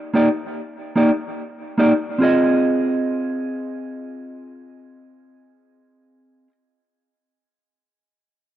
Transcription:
0, 0, Header, 1, 2, 480
1, 0, Start_track
1, 0, Tempo, 822143
1, 1283, Time_signature, 4, 2, 24, 8
1, 4998, End_track
2, 0, Start_track
2, 0, Title_t, "Clean electric guitar"
2, 0, Program_c, 0, 27
2, 80, Note_on_c, 0, 58, 74
2, 85, Note_on_c, 0, 63, 74
2, 88, Note_on_c, 0, 67, 79
2, 91, Note_on_c, 0, 74, 76
2, 161, Note_off_c, 0, 58, 0
2, 164, Note_off_c, 0, 63, 0
2, 165, Note_off_c, 0, 67, 0
2, 167, Note_off_c, 0, 74, 0
2, 558, Note_on_c, 0, 58, 78
2, 562, Note_on_c, 0, 63, 74
2, 566, Note_on_c, 0, 67, 72
2, 570, Note_on_c, 0, 74, 73
2, 641, Note_off_c, 0, 58, 0
2, 643, Note_off_c, 0, 63, 0
2, 645, Note_off_c, 0, 67, 0
2, 646, Note_off_c, 0, 74, 0
2, 1037, Note_on_c, 0, 58, 75
2, 1043, Note_on_c, 0, 63, 81
2, 1046, Note_on_c, 0, 67, 88
2, 1050, Note_on_c, 0, 74, 88
2, 1120, Note_off_c, 0, 58, 0
2, 1123, Note_off_c, 0, 63, 0
2, 1125, Note_off_c, 0, 67, 0
2, 1126, Note_off_c, 0, 74, 0
2, 1276, Note_on_c, 0, 60, 67
2, 1285, Note_on_c, 0, 65, 68
2, 1295, Note_on_c, 0, 68, 81
2, 1305, Note_on_c, 0, 75, 82
2, 3779, Note_off_c, 0, 60, 0
2, 3789, Note_off_c, 0, 65, 0
2, 3799, Note_off_c, 0, 68, 0
2, 3808, Note_off_c, 0, 75, 0
2, 4998, End_track
0, 0, End_of_file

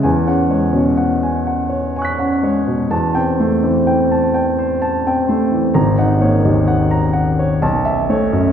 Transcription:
0, 0, Header, 1, 2, 480
1, 0, Start_track
1, 0, Tempo, 953895
1, 23, Time_signature, 3, 2, 24, 8
1, 2424, Tempo, 937500
1, 4322, End_track
2, 0, Start_track
2, 0, Title_t, "Grand piano"
2, 0, Program_c, 0, 0
2, 0, Control_c, 0, 64, 127
2, 16, Note_on_c, 0, 80, 49
2, 19, Note_on_c, 0, 40, 53
2, 32, Control_c, 0, 64, 0
2, 125, Control_c, 0, 64, 127
2, 136, Note_on_c, 0, 61, 35
2, 139, Note_on_c, 0, 78, 41
2, 210, Note_off_c, 0, 80, 0
2, 251, Note_on_c, 0, 56, 35
2, 254, Note_on_c, 0, 73, 35
2, 328, Note_off_c, 0, 61, 0
2, 330, Note_off_c, 0, 78, 0
2, 365, Note_on_c, 0, 61, 34
2, 368, Note_on_c, 0, 47, 33
2, 444, Note_off_c, 0, 56, 0
2, 446, Note_off_c, 0, 73, 0
2, 490, Note_on_c, 0, 78, 40
2, 561, Note_off_c, 0, 61, 0
2, 562, Note_off_c, 0, 47, 0
2, 619, Note_on_c, 0, 80, 38
2, 684, Note_off_c, 0, 78, 0
2, 739, Note_on_c, 0, 78, 39
2, 810, Note_off_c, 0, 80, 0
2, 852, Note_on_c, 0, 73, 37
2, 932, Note_off_c, 0, 78, 0
2, 987, Note_on_c, 0, 80, 43
2, 999, Note_on_c, 0, 85, 31
2, 1015, Note_on_c, 0, 90, 31
2, 1030, Note_on_c, 0, 95, 28
2, 1051, Note_off_c, 0, 73, 0
2, 1101, Note_on_c, 0, 61, 35
2, 1102, Note_on_c, 0, 78, 37
2, 1179, Note_off_c, 0, 80, 0
2, 1223, Note_on_c, 0, 56, 39
2, 1227, Note_on_c, 0, 73, 42
2, 1296, Note_off_c, 0, 61, 0
2, 1296, Note_off_c, 0, 78, 0
2, 1345, Note_on_c, 0, 47, 32
2, 1417, Note_off_c, 0, 56, 0
2, 1419, Note_off_c, 0, 73, 0
2, 1443, Note_off_c, 0, 40, 0
2, 1455, Note_off_c, 0, 85, 0
2, 1461, Note_on_c, 0, 40, 46
2, 1463, Note_off_c, 0, 90, 0
2, 1464, Note_on_c, 0, 81, 50
2, 1465, Note_off_c, 0, 47, 0
2, 1470, Note_off_c, 0, 95, 0
2, 1475, Control_c, 0, 64, 0
2, 1574, Control_c, 0, 64, 127
2, 1584, Note_on_c, 0, 79, 45
2, 1585, Note_on_c, 0, 60, 38
2, 1658, Note_off_c, 0, 81, 0
2, 1710, Note_on_c, 0, 57, 40
2, 1710, Note_on_c, 0, 72, 37
2, 1779, Note_off_c, 0, 60, 0
2, 1779, Note_off_c, 0, 79, 0
2, 1828, Note_on_c, 0, 60, 36
2, 1831, Note_on_c, 0, 52, 41
2, 1902, Note_off_c, 0, 57, 0
2, 1902, Note_off_c, 0, 72, 0
2, 1948, Note_on_c, 0, 79, 42
2, 2021, Note_off_c, 0, 60, 0
2, 2022, Note_off_c, 0, 52, 0
2, 2071, Note_on_c, 0, 81, 41
2, 2140, Note_off_c, 0, 79, 0
2, 2186, Note_on_c, 0, 79, 40
2, 2261, Note_off_c, 0, 81, 0
2, 2308, Note_on_c, 0, 72, 44
2, 2377, Note_off_c, 0, 79, 0
2, 2424, Note_on_c, 0, 81, 47
2, 2497, Note_off_c, 0, 72, 0
2, 2552, Note_on_c, 0, 60, 41
2, 2553, Note_on_c, 0, 79, 42
2, 2615, Note_off_c, 0, 81, 0
2, 2663, Note_on_c, 0, 72, 45
2, 2665, Note_on_c, 0, 57, 39
2, 2738, Note_off_c, 0, 60, 0
2, 2738, Note_off_c, 0, 79, 0
2, 2781, Note_on_c, 0, 52, 34
2, 2853, Note_off_c, 0, 72, 0
2, 2854, Note_off_c, 0, 57, 0
2, 2878, Note_off_c, 0, 40, 0
2, 2898, Note_on_c, 0, 82, 46
2, 2901, Note_off_c, 0, 52, 0
2, 2901, Note_on_c, 0, 32, 60
2, 2909, Control_c, 0, 64, 0
2, 2997, Control_c, 0, 64, 127
2, 3022, Note_on_c, 0, 78, 46
2, 3023, Note_on_c, 0, 63, 41
2, 3091, Note_off_c, 0, 82, 0
2, 3136, Note_on_c, 0, 58, 43
2, 3138, Note_on_c, 0, 73, 42
2, 3213, Note_off_c, 0, 78, 0
2, 3214, Note_off_c, 0, 63, 0
2, 3259, Note_on_c, 0, 63, 38
2, 3260, Note_on_c, 0, 39, 44
2, 3329, Note_off_c, 0, 58, 0
2, 3330, Note_off_c, 0, 73, 0
2, 3376, Note_on_c, 0, 78, 47
2, 3449, Note_off_c, 0, 63, 0
2, 3450, Note_off_c, 0, 39, 0
2, 3495, Note_on_c, 0, 82, 46
2, 3567, Note_off_c, 0, 78, 0
2, 3610, Note_on_c, 0, 78, 42
2, 3687, Note_off_c, 0, 82, 0
2, 3742, Note_on_c, 0, 73, 44
2, 3807, Note_off_c, 0, 78, 0
2, 3839, Note_off_c, 0, 32, 0
2, 3858, Note_on_c, 0, 35, 54
2, 3861, Note_on_c, 0, 81, 47
2, 3862, Note_off_c, 0, 73, 0
2, 3871, Control_c, 0, 64, 0
2, 3964, Control_c, 0, 64, 127
2, 3977, Note_on_c, 0, 76, 53
2, 4056, Note_off_c, 0, 81, 0
2, 4102, Note_on_c, 0, 57, 42
2, 4104, Note_on_c, 0, 73, 53
2, 4174, Note_off_c, 0, 76, 0
2, 4220, Note_on_c, 0, 42, 42
2, 4296, Note_off_c, 0, 57, 0
2, 4297, Note_off_c, 0, 73, 0
2, 4322, Note_off_c, 0, 35, 0
2, 4322, Note_off_c, 0, 42, 0
2, 4322, End_track
0, 0, End_of_file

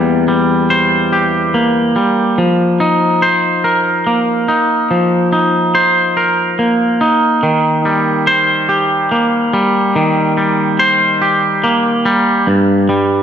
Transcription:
0, 0, Header, 1, 2, 480
1, 0, Start_track
1, 0, Tempo, 841515
1, 1358, Time_signature, 6, 3, 24, 8
1, 7546, End_track
2, 0, Start_track
2, 0, Title_t, "Clean electric guitar"
2, 0, Program_c, 0, 27
2, 0, Note_on_c, 0, 40, 62
2, 0, Note_on_c, 0, 55, 60
2, 0, Note_on_c, 0, 58, 57
2, 0, Note_on_c, 0, 67, 62
2, 0, Note_on_c, 0, 72, 66
2, 153, Note_off_c, 0, 55, 0
2, 160, Note_on_c, 0, 55, 57
2, 398, Note_off_c, 0, 72, 0
2, 400, Note_off_c, 0, 67, 0
2, 400, Note_on_c, 0, 72, 65
2, 642, Note_on_c, 0, 67, 54
2, 878, Note_off_c, 0, 58, 0
2, 880, Note_on_c, 0, 58, 54
2, 1111, Note_off_c, 0, 55, 0
2, 1117, Note_on_c, 0, 55, 57
2, 1120, Note_off_c, 0, 40, 0
2, 1358, Note_off_c, 0, 55, 0
2, 1358, Note_on_c, 0, 53, 61
2, 1361, Note_off_c, 0, 67, 0
2, 1598, Note_on_c, 0, 63, 58
2, 1836, Note_off_c, 0, 72, 0
2, 1838, Note_on_c, 0, 72, 67
2, 1855, Note_off_c, 0, 58, 0
2, 2078, Note_on_c, 0, 70, 59
2, 2319, Note_on_c, 0, 58, 57
2, 2555, Note_off_c, 0, 63, 0
2, 2558, Note_on_c, 0, 63, 57
2, 2559, Note_off_c, 0, 53, 0
2, 2799, Note_on_c, 0, 53, 59
2, 3035, Note_off_c, 0, 63, 0
2, 3037, Note_on_c, 0, 63, 60
2, 3276, Note_off_c, 0, 72, 0
2, 3278, Note_on_c, 0, 72, 72
2, 3295, Note_off_c, 0, 70, 0
2, 3518, Note_on_c, 0, 70, 61
2, 3756, Note_off_c, 0, 58, 0
2, 3758, Note_on_c, 0, 58, 63
2, 3996, Note_off_c, 0, 63, 0
2, 3998, Note_on_c, 0, 63, 64
2, 3999, Note_off_c, 0, 53, 0
2, 4238, Note_on_c, 0, 51, 68
2, 4477, Note_off_c, 0, 63, 0
2, 4479, Note_on_c, 0, 55, 58
2, 4716, Note_off_c, 0, 72, 0
2, 4718, Note_on_c, 0, 72, 74
2, 4735, Note_off_c, 0, 58, 0
2, 4735, Note_off_c, 0, 70, 0
2, 4956, Note_on_c, 0, 67, 62
2, 5199, Note_on_c, 0, 58, 61
2, 5436, Note_off_c, 0, 55, 0
2, 5437, Note_off_c, 0, 51, 0
2, 5439, Note_on_c, 0, 55, 67
2, 5679, Note_on_c, 0, 51, 69
2, 5909, Note_off_c, 0, 55, 0
2, 5916, Note_off_c, 0, 72, 0
2, 5916, Note_on_c, 0, 55, 60
2, 6155, Note_off_c, 0, 67, 0
2, 6157, Note_on_c, 0, 72, 79
2, 6396, Note_off_c, 0, 58, 0
2, 6397, Note_on_c, 0, 67, 66
2, 6637, Note_on_c, 0, 58, 63
2, 6869, Note_off_c, 0, 55, 0
2, 6875, Note_off_c, 0, 51, 0
2, 6876, Note_on_c, 0, 55, 70
2, 7114, Note_off_c, 0, 55, 0
2, 7114, Note_off_c, 0, 58, 0
2, 7114, Note_off_c, 0, 67, 0
2, 7114, Note_off_c, 0, 72, 0
2, 7114, Note_on_c, 0, 43, 73
2, 7353, Note_on_c, 0, 55, 71
2, 7546, Note_off_c, 0, 43, 0
2, 7546, Note_off_c, 0, 55, 0
2, 7546, End_track
0, 0, End_of_file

